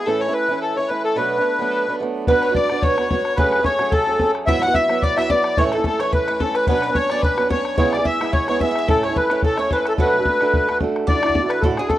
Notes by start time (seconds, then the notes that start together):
0.06 A2 E3 A3 C#4 E4 A4
0.20 C#5
0.28 A3 C#4 E4
0.33 B4
0.48 E3 A3 C#4 E4
0.62 A4
0.76 E3 A3 C#4 E4 C#5
0.88 E3 A3 C#4 E4 B4
1.04 A4
1.16 B2 F#3 A3 B3 D4 B4
1.38 A3 B3 D4 C#5
1.46 B4
1.59 F#3 A3 B3 D4
1.71 A4 B4
1.87 F#3 A3 B3 D4
2.00 F#3 A3 B3 D4
2.27 B3 D4 F#4 B4, bodhran
2.42 C#5, bodhran
2.49 D4 F#4 B4
2.55 D5, bodhran
2.69 B3 D4 F#4 B4, bodhran
2.82 C#5, bodhran
2.98 B3 D4 F#4 B4, bodhran
3.10 B3 D4 F#4 B4, bodhran
3.25 bodhran
3.36 F#3 A3 C#4 G#4 B4, bodhran
3.52 bodhran
3.59 A3 C#4 G#4
3.64 C#5, bodhran
3.79 F#3 A3 C#4 G#4, bodhran
3.91 A4, bodhran
4.07 F#3 A3 C#4 G#4
4.19 F#3 A3 C#4 G#4, bodhran
4.35 bodhran
4.46 G#2 E3 F#3 B3 E4 F#4 E5, bodhran
4.62 F#5, bodhran
4.67 F#3 B3 E4 F#4
4.74 E5, bodhran
4.88 F#3 B3 E4 F#4, bodhran
5.02 D5, bodhran
5.16 F#3 B3 E4 F#4 E5, bodhran
5.29 F#3 B3 E4 F#4 D5, bodhran
5.44 bodhran
5.57 A2 E3 A3 C#4 E4 C#5, bodhran
5.72 A4, bodhran
5.78 A3 C#4 E4
5.84 A4, bodhran
5.99 E3 A3 C#4 E4 C#5, bodhran
6.12 B4, bodhran
6.28 E3 A3 C#4 E4 B4, bodhran
6.40 E3 A3 C#4 E4 A4, bodhran
6.55 B4, bodhran
6.67 B2 F#3 B3 C#4 D4 B4, bodhran
6.82 B4, bodhran
6.88 B3 C#4 D4
6.95 C#5, bodhran
7.10 F#3 B3 C#4 D4 D5, bodhran
7.22 B4, bodhran
7.37 F#3 B3 C#4 D4, bodhran
7.49 F#3 B3 C#4 D4 C#5, bodhran
7.65 bodhran
7.77 C#3 G#3 B3 E4 G#4 C#5, bodhran
7.92 D5, bodhran
7.98 B3 E4 G#4
8.05 E5, bodhran
8.20 G#3 B3 E4 G#4, bodhran
8.33 C#5, bodhran
8.47 G#3 B3 E4 G#4 C#5, bodhran
8.60 G#3 B3 E4 G#4 E5, bodhran
8.71 E5
8.76 E5, bodhran
8.87 A2 A3 C#4 E4 A4, bodhran
9.03 C#5, bodhran
9.08 C#4 E4 A4
9.16 B4, bodhran
9.29 A3 C#4 E4 A4 B4, bodhran
9.42 A4, bodhran
9.57 A3 C#4 E4 A4 C#5, bodhran
9.70 A3 C#4 E4 A4 B4, bodhran
9.85 A4, bodhran
9.98 B2 F#3 A3 D4 F#4 A4 B4, bodhran
10.19 A3 D4 F#4 A4
10.25 bodhran
10.41 A3 D4 F#4 A4, bodhran
10.53 bodhran
10.68 A3 D4 F#4 A4, bodhran
10.80 A3 D4 F#4 A4, bodhran
10.96 bodhran
11.07 D3 D4 E4 F#4 D5, bodhran
11.22 D3 D4 E4 F#4, bodhran
11.29 bodhran
11.35 bodhran
11.42 D3 D4 E4 F#4
11.49 B4, bodhran
11.61 D2 A2 D3 D4 E4 A4, bodhran
11.65 F#4
11.76 D3 D4 E4 G#4, bodhran
11.80 F#4
11.88 A4, bodhran